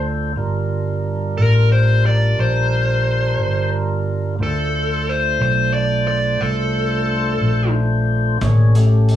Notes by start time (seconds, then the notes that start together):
Already playing: D2 D4 F4 A4 C5
0.36 G1 G3 D4 F4 A#4
1.37 A1 A#4
1.72 C5
2.06 D5
2.37 A#1 C5
3.38 G1
4.39 D2 A3 D4 F4 C5
4.43 A4
5.09 C5
5.39 B1 C5
5.74 D5
6.08 D5
6.41 C2 A4
7.41 A#1
8.41 A1 A#3 D4 G#4 C#5, kick, closed hi-hat
8.75 A3 C#4 G4 A4, closed hi-hat
9.09 closed hi-hat